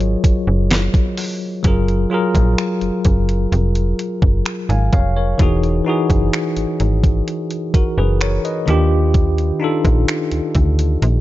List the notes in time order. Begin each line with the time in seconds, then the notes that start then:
Already playing: G#1 F#3 F4 G#4 C#5
0.00 closed hi-hat
0.24 F#1, kick, closed hi-hat
0.47 F#1
0.71 snare, closed hi-hat
0.94 kick, closed hi-hat
1.17 open hi-hat
1.63 F#1 F#3 F4 G#4, kick, closed hi-hat
1.67 A#4
1.88 closed hi-hat
2.10 F#3 F4 G#4
2.14 A#4
2.35 A#1, kick, closed hi-hat
2.58 finger snap, closed hi-hat
2.81 F#1, closed hi-hat
3.05 F#1, kick, closed hi-hat
3.29 closed hi-hat
3.52 F1, closed hi-hat
3.75 closed hi-hat
3.99 closed hi-hat
4.22 F#1, kick
4.46 finger snap, closed hi-hat
4.69 G#1 F5 G#5, closed hi-hat
4.93 F1 C#5 F5, kick, closed hi-hat
5.17 A#4 C#5
5.38 E1 E3 D#4 F#4, kick, closed hi-hat
5.42 G#4
5.63 closed hi-hat
5.85 E3 D#4 F#4
5.89 G#4
6.10 F#1, kick, closed hi-hat
6.33 finger snap, closed hi-hat
6.57 G#1, closed hi-hat
6.80 G#1, closed hi-hat
7.04 kick, closed hi-hat
7.28 closed hi-hat
7.51 closed hi-hat
7.74 F#1 F#4 A#4, kick, closed hi-hat
7.98 F#1 G#4 B4
8.21 A#4 C#5, finger snap, closed hi-hat
8.45 B4 D#5, closed hi-hat
8.66 D#2 D#3 D4 F4, closed hi-hat
8.70 G4
9.14 kick, closed hi-hat
9.38 closed hi-hat
9.60 D4 D#4 F4
9.64 A4
9.85 A#1, kick, closed hi-hat
10.08 finger snap, closed hi-hat
10.31 D2, closed hi-hat
10.55 D2, kick, closed hi-hat
10.79 closed hi-hat
11.02 A#1, closed hi-hat